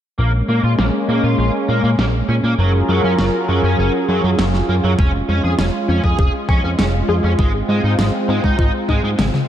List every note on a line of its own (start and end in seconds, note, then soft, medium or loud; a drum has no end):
0.18 0.43 A#1 medium
0.18 2.56 G#3 medium
0.18 0.30 A#3 medium
0.18 2.56 A#3 medium
0.18 2.56 C#4 medium
0.49 0.61 A#2 medium
0.49 0.60 A#3 medium
0.63 0.76 A#2 medium
0.63 0.71 F4 medium
0.79 0.91 A#1 medium
0.79 0.83 A#3 medium
0.79 snare loud
1.09 1.21 A#2 medium
1.09 1.20 A#3 medium
1.24 1.36 A#2 medium
1.24 1.35 F4 medium
1.39 1.51 A#1 medium
1.39 1.50 F4 medium
1.69 1.81 A#2 medium
1.69 1.80 A#3 medium
1.84 1.96 A#2 medium
1.84 1.88 A#3 medium
1.99 2.23 A#1 medium
1.99 2.03 A#3 medium
1.99 snare loud
2.29 2.41 A#2 medium
2.29 2.33 C#4 medium
2.44 2.56 A#2 medium
2.44 2.51 A#3 medium
2.58 2.83 F#1 loud
2.58 4.96 F#3 medium
2.58 2.70 F#3 medium
2.58 7.35 C#4 medium
2.58 9.48 F4 medium
2.58 4.96 G#4 medium
2.58 4.96 A#4 medium
2.89 3.01 F#2 medium
2.89 3.00 F#3 medium
3.04 3.16 F#2 medium
3.04 3.11 C#4 medium
3.19 3.31 F#1 medium
3.19 3.23 F#3 medium
3.19 snare loud
3.49 3.61 F#2 medium
3.49 3.60 F#3 medium
3.64 3.76 F#2 medium
3.64 3.75 C#4 loud
3.79 3.91 F#1 medium
3.79 3.90 C#4 medium
4.09 4.21 F#2 medium
4.09 4.20 F#3 medium
4.24 4.36 F#2 loud
4.24 4.28 F#3 medium
4.39 4.63 F#1 medium
4.39 4.43 F#3 medium
4.39 snare loud
4.54 snare soft
4.69 4.81 F#2 medium
4.69 4.73 A#3 medium
4.84 4.96 F#2 medium
4.84 4.91 F#3 loud
4.99 5.23 F1 loud
4.99 9.48 G#3 medium
4.99 5.25 G#3 medium
4.99 5.10 C#4 medium
4.99 kick loud
5.29 5.41 F2 medium
5.29 5.55 G#3 medium
5.29 5.40 C#4 medium
5.44 5.56 F2 medium
5.44 5.51 G#4 medium
5.59 5.71 F1 medium
5.59 5.85 G#3 medium
5.59 5.63 C#4 medium
5.59 snare loud
5.89 6.01 F2 medium
5.89 6.04 C#4 medium
5.89 6.00 C#4 medium
6.04 6.16 F2 medium
6.04 6.15 G#4 loud
6.04 kick medium
6.19 6.31 F1 medium
6.19 6.45 G#4 medium
6.19 6.30 G#4 medium
6.19 kick loud
6.49 6.61 F2 medium
6.49 6.60 C#4 medium
6.49 6.75 G#5 medium
6.49 kick loud
6.64 6.76 F2 loud
6.64 6.68 C#4 medium
6.79 7.03 F1 medium
6.79 7.05 G#3 medium
6.79 6.83 C#4 medium
6.79 snare loud
7.09 7.21 F2 medium
7.09 7.13 F4 medium
7.09 7.35 G#4 loud
7.24 7.36 F2 medium
7.24 7.31 C#4 loud
7.39 7.63 G#1 loud
7.39 7.50 G#3 medium
7.39 7.65 G#3 medium
7.39 9.48 C4 medium
7.39 kick loud
7.69 7.81 G#2 medium
7.69 7.80 G#3 medium
7.69 7.95 G#3 medium
7.84 7.96 G#2 medium
7.84 7.91 D#4 medium
7.99 8.11 G#1 medium
7.99 8.25 G#3 medium
7.99 8.03 G#3 medium
7.99 snare loud
8.29 8.41 G#2 medium
8.29 8.40 G#3 medium
8.29 8.44 C4 medium
8.44 8.56 G#2 medium
8.44 8.55 D#4 loud
8.44 kick medium
8.59 8.71 G#1 medium
8.59 8.70 D#4 medium
8.59 8.85 F4 medium
8.59 kick loud
8.89 9.01 G#2 medium
8.89 9.00 G#3 medium
8.89 9.04 D#4 medium
8.89 kick medium
9.04 9.16 G#2 loud
9.04 9.08 G#3 medium
9.19 9.31 G#1 loud
9.19 9.34 G#3 medium
9.19 9.23 G#3 medium
9.19 snare loud
9.19 high tom medium
9.34 snare soft
9.34 high tom medium